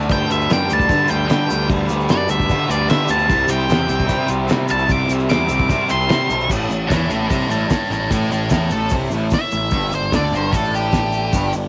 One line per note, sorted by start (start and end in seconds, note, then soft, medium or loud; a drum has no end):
0.00 3.30 D4 medium
0.00 shaker soft
0.07 0.29 D2 medium
0.07 0.48 G2 loud
0.07 0.30 D3 medium
0.07 0.25 G3 loud
0.07 3.25 G4 medium
0.07 3.25 B4 medium
0.07 kick loud
0.07 crash medium
0.07 shaker medium
0.11 3.26 D5 medium
0.11 0.30 G5 medium
0.25 0.66 G3 medium
0.30 0.49 D2 medium
0.30 0.69 D3 medium
0.30 0.52 E5 medium
0.30 shaker medium
0.41 shaker soft
0.50 0.69 F#2 loud
0.50 0.73 G5 medium
0.50 snare loud
0.50 crash medium
0.50 shaker medium
0.66 0.87 D3 medium
0.66 0.88 G3 medium
0.66 shaker medium
0.71 0.89 D2 loud
0.71 1.10 A5 medium
0.80 kick medium
0.80 shaker soft
0.86 1.25 G2 medium
0.86 1.09 D3 medium
0.86 1.06 G3 loud
0.86 kick loud
0.86 crash medium
0.90 shaker medium
1.06 1.30 G3 medium
1.06 shaker medium
1.10 1.29 D2 medium
1.10 1.27 D3 medium
1.10 1.27 G5 medium
1.27 1.66 G2 medium
1.27 1.49 D3 medium
1.27 1.49 D3 loud
1.27 1.67 G5 loud
1.27 crash medium
1.27 shaker medium
1.31 1.46 G3 medium
1.31 snare loud
1.46 1.70 G3 medium
1.46 shaker medium
1.51 1.69 D2 loud
1.51 1.69 D3 medium
1.61 shaker soft
1.67 1.89 D2 medium
1.67 2.08 G2 medium
1.67 1.90 D3 medium
1.67 1.87 G3 loud
1.67 kick loud
1.67 crash medium
1.67 shaker medium
1.87 2.09 D2 medium
1.87 2.31 D3 medium
1.87 2.29 G3 medium
1.87 shaker medium
2.00 shaker soft
2.09 2.29 F#2 medium
2.09 2.29 D5 loud
2.09 snare loud
2.09 crash medium
2.09 shaker medium
2.29 2.49 D2 loud
2.29 2.50 D3 medium
2.29 2.52 G3 medium
2.29 2.69 E5 medium
2.29 shaker medium
2.40 kick medium
2.40 shaker soft
2.49 2.86 G2 medium
2.49 2.68 D3 medium
2.49 2.70 D3 loud
2.49 2.67 G3 loud
2.49 kick loud
2.49 crash medium
2.49 shaker medium
2.67 2.88 D2 medium
2.67 2.90 G3 medium
2.67 2.89 D5 loud
2.67 shaker loud
2.71 2.87 D3 medium
2.87 3.27 G2 medium
2.87 3.08 D3 medium
2.87 3.08 D3 loud
2.87 3.05 G3 medium
2.87 3.09 E5 medium
2.87 crash medium
2.87 shaker medium
2.91 snare loud
3.06 3.28 D2 medium
3.06 3.26 D3 medium
3.06 3.28 G3 medium
3.06 shaker medium
3.10 3.49 A5 medium
3.18 shaker soft
3.26 3.47 C2 medium
3.26 4.05 C3 medium
3.26 3.51 G3 medium
3.26 3.47 C4 loud
3.26 6.45 G4 medium
3.26 6.46 C5 medium
3.26 6.47 E5 medium
3.26 kick loud
3.26 crash medium
3.26 shaker medium
3.47 3.68 C2 medium
3.47 3.86 C4 medium
3.47 4.28 G5 loud
3.47 shaker loud
3.52 3.90 G3 medium
3.59 shaker soft
3.69 3.88 E2 loud
3.69 snare loud
3.69 crash medium
3.69 shaker medium
3.87 4.08 C2 medium
3.87 4.06 G3 medium
3.87 4.08 C4 medium
3.87 shaker medium
3.99 kick medium
3.99 shaker soft
4.06 4.46 C3 medium
4.06 4.29 C3 medium
4.06 4.30 G3 loud
4.06 4.26 C4 loud
4.06 kick loud
4.06 shaker medium
4.10 crash medium
4.27 4.49 C2 medium
4.27 4.47 G3 medium
4.27 4.49 C4 medium
4.27 shaker medium
4.47 4.84 C3 medium
4.47 4.69 C3 loud
4.47 4.69 G3 medium
4.47 4.65 C4 medium
4.47 snare loud
4.47 crash medium
4.47 shaker medium
4.66 4.86 G3 medium
4.66 4.87 C4 medium
4.66 shaker loud
4.71 4.89 C2 loud
4.71 4.90 A5 medium
4.79 shaker soft
4.85 5.27 C3 loud
4.85 5.09 G3 loud
4.85 5.04 C4 loud
4.89 5.08 C2 medium
4.89 5.10 D6 medium
4.89 kick loud
4.89 crash medium
4.89 shaker medium
5.06 5.29 C2 medium
5.06 5.47 C4 medium
5.06 shaker loud
5.10 5.51 G3 medium
5.19 shaker soft
5.29 5.48 E2 medium
5.29 5.88 D6 medium
5.29 snare loud
5.29 crash medium
5.29 shaker medium
5.48 5.69 C2 loud
5.48 5.67 G3 medium
5.48 5.69 C4 medium
5.48 shaker loud
5.59 kick medium
5.59 shaker soft
5.67 6.08 C3 medium
5.67 5.89 C3 medium
5.67 5.90 G3 medium
5.67 5.86 C4 loud
5.67 kick loud
5.67 crash medium
5.67 shaker medium
5.87 6.09 C2 medium
5.87 6.09 G3 medium
5.87 6.11 C4 medium
5.87 6.49 C6 loud
5.87 shaker medium
6.01 shaker soft
6.09 6.48 C3 medium
6.09 6.28 C3 loud
6.09 6.32 G3 medium
6.09 6.28 C4 medium
6.09 snare loud
6.09 crash medium
6.09 shaker medium
6.29 6.49 B1 loud
6.29 6.50 G3 medium
6.29 6.48 C4 medium
6.29 shaker medium
6.40 shaker soft
6.49 6.69 A1 medium
6.49 6.69 A2 loud
6.49 9.67 E4 medium
6.49 9.68 A4 medium
6.49 9.69 C#5 medium
6.49 kick loud
6.49 crash loud
6.49 shaker medium
6.70 6.89 A1 medium
6.70 6.86 A2 medium
6.70 shaker medium
6.87 7.09 E2 medium
6.87 7.08 E3 loud
6.87 7.08 A4 medium
6.87 7.09 C#5 loud
6.87 kick loud
6.87 open hi-hat medium
6.87 shaker medium
6.92 snare loud
7.09 7.29 A1 loud
7.09 7.29 A2 medium
7.09 7.28 A4 medium
7.09 7.28 C#5 medium
7.09 shaker medium
7.29 7.49 C2 medium
7.29 7.48 C3 loud
7.29 7.48 A4 medium
7.29 7.49 C#5 medium
7.29 kick loud
7.29 open hi-hat medium
7.29 shaker loud
7.48 7.69 A1 medium
7.48 7.67 A2 loud
7.48 7.69 G4 medium
7.48 7.69 B4 loud
7.48 shaker medium
7.69 7.90 G4 medium
7.69 7.90 B4 medium
7.69 muted distorted electric guitar stroke medium
7.69 muted picked electric bass stroke soft
7.69 kick loud
7.69 snare loud
7.69 open hi-hat medium
7.69 shaker medium
7.90 8.09 A1 medium
7.90 8.07 A2 medium
7.90 8.10 G4 medium
7.90 8.12 B4 medium
7.90 shaker medium
8.10 8.30 A1 medium
8.10 8.30 A2 loud
8.10 8.30 E4 medium
8.10 8.31 A4 loud
8.10 kick loud
8.10 open hi-hat medium
8.10 shaker loud
8.31 8.50 A1 medium
8.31 8.48 A2 medium
8.31 8.49 E4 medium
8.31 8.51 A4 medium
8.31 shaker medium
8.50 8.70 E2 loud
8.50 8.71 E3 loud
8.50 8.70 E4 medium
8.50 8.71 A4 loud
8.50 kick loud
8.50 snare loud
8.50 open hi-hat medium
8.50 shaker medium
8.70 8.90 A1 loud
8.70 8.92 A2 loud
8.70 8.92 A4 medium
8.70 shaker medium
8.89 9.09 C2 medium
8.89 9.11 C3 loud
8.89 kick loud
8.89 open hi-hat medium
8.89 shaker medium
9.10 9.30 A1 medium
9.10 9.32 A2 loud
9.10 shaker medium
9.30 9.92 E5 loud
9.30 muted picked electric bass stroke soft
9.30 muted distorted electric guitar stroke medium
9.30 kick loud
9.30 snare loud
9.30 open hi-hat medium
9.30 shaker medium
9.51 9.71 A1 medium
9.51 9.68 A2 medium
9.51 shaker medium
9.71 9.91 G1 medium
9.71 9.91 G2 loud
9.71 11.68 D4 medium
9.71 11.68 G4 medium
9.71 11.68 D5 medium
9.71 kick loud
9.71 open hi-hat medium
9.71 shaker medium
9.92 10.11 G1 medium
9.92 10.09 G2 medium
9.92 10.13 C5 medium
9.92 shaker medium
10.12 10.31 D2 medium
10.12 10.32 D3 loud
10.12 10.33 D5 loud
10.12 kick loud
10.12 snare loud
10.12 open hi-hat medium
10.12 shaker medium
10.32 10.51 G1 loud
10.32 10.52 G2 medium
10.32 shaker medium
10.36 10.54 C5 medium
10.52 11.29 A1 medium
10.52 11.32 A2 loud
10.52 10.75 A4 loud
10.52 kick loud
10.52 open hi-hat medium
10.52 shaker medium
10.74 11.52 G4 loud
10.74 shaker medium
10.92 kick loud
10.92 snare loud
10.92 open hi-hat medium
10.92 shaker medium
11.12 shaker medium
11.32 11.52 G1 loud
11.32 11.52 G2 loud
11.32 kick loud
11.32 open hi-hat medium
11.32 shaker loud
11.53 11.68 G1 medium
11.53 11.68 G2 medium
11.53 shaker medium